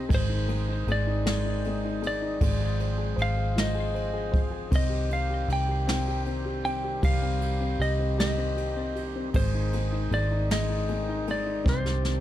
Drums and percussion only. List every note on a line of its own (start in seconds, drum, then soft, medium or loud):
0.10 kick loud
0.10 ride medium
0.49 ride soft
0.88 ride soft
1.26 snare loud
1.26 ride medium
1.64 ride soft
2.03 ride soft
2.41 kick loud
2.41 ride medium
2.80 ride soft
3.19 ride soft
3.58 snare loud
3.58 ride medium
3.95 ride soft
4.34 kick loud
4.34 ride soft
4.72 kick loud
4.72 ride medium
5.11 ride soft
5.50 ride soft
5.88 snare loud
5.88 ride medium
6.26 ride soft
6.65 ride soft
7.03 kick loud
7.03 ride medium
7.41 ride soft
7.81 ride soft
8.20 snare loud
8.20 ride medium
8.57 ride soft
8.96 ride soft
9.34 kick loud
9.34 ride medium
9.73 ride soft
10.12 ride soft
10.51 snare loud
10.51 ride medium
10.88 ride soft
11.27 ride soft
11.66 kick loud
11.66 snare medium
11.86 snare medium
12.05 snare medium